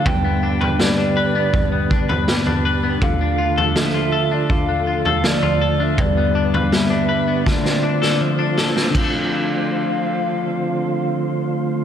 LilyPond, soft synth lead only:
\new Staff \with { instrumentName = "Soft synth lead" } { \time 4/4 \key d \dorian \tempo 4 = 81 g''4 d''2~ d''8 r8 | f''4 e''8. d''16 f''8. f''16 d''8. e''16 | d''8. f''16 e''4 d''4. r8 | f''1 | }